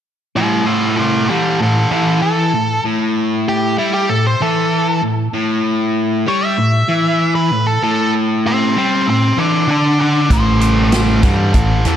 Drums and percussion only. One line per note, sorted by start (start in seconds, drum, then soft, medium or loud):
10.30 kick medium
10.30 closed hi-hat medium
10.61 closed hi-hat medium
10.92 snare loud
10.92 closed hi-hat medium
11.23 kick medium
11.23 snare soft
11.23 closed hi-hat medium
11.54 kick medium
11.54 closed hi-hat medium
11.85 closed hi-hat medium